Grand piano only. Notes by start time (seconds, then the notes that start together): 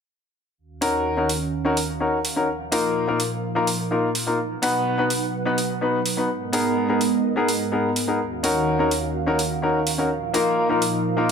0.81 C#4 D#4 F#4 A#4
1.17 C#4 D#4 F#4 A#4
1.65 C#4 D#4 F#4 A#4
2.00 C#4 D#4 F#4 A#4
2.36 C#4 D#4 F#4 A#4
2.72 A#3 D#4 F4 A#4
3.07 A#3 D#4 F4 A#4
3.55 A#3 D#4 F4 A#4
3.91 A#3 D#4 F4 A#4
4.26 A#3 D#4 F4 A#4
4.62 B3 D#4 F#4 B4
4.98 B3 D#4 F#4 B4
5.45 B3 D#4 F#4 B4
5.81 B3 D#4 F#4 B4
6.17 B3 D#4 F#4 B4
6.53 B3 D#4 G#4 A#4
6.89 B3 D#4 G#4 A#4
7.36 B3 D#4 G#4 A#4
7.72 B3 D#4 G#4 A#4
8.07 B3 D#4 G#4 A#4
8.43 C#4 D#4 F#4 A#4
8.79 C#4 D#4 F#4 A#4
9.26 C#4 D#4 F#4 A#4
9.62 C#4 D#4 F#4 A#4
9.98 C#4 D#4 F#4 A#4
10.34 A#3 D#4 F4 A#4
10.69 A#3 D#4 F4 A#4
11.17 A#3 D#4 F4 A#4